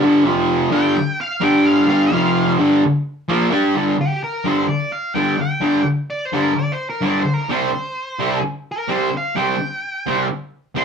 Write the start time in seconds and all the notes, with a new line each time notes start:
0.02 G2 D3 G3
0.26 F2 C3 F3
0.70 G2 D3 G3 G5
1.21 F5
1.41 G2 D3 G3 G5
1.66 F5
1.87 G2 D3 G3 F5
2.07 F2 F5
2.11 C3 F3
2.58 G2 D3 G3
3.29 A#2 F3 A#3
3.50 G3 D4 G4
3.75 G2 D3 G3
4.01 G4
4.24 A#4
4.44 G2 D3 G3 C5
4.69 D5
4.92 F5
5.15 G2 D3 G3 G5
5.41 G5
5.61 G2 D3 G3
6.10 D5
6.25 C5
6.32 G2 D3 G3
6.42 A#4
6.59 D5
6.72 C5
6.90 A#4
7.01 G2 D3 G3
7.05 D5
7.20 C5
7.34 A#4
7.49 C3 G3 C4 C5
8.19 C3 G3 C4
8.72 A#4
8.88 C3 G3 C4 C5
9.17 F5
9.36 C3 G3 C4 G5
10.06 C3 G3 C4
10.75 C3 G3 C4 C6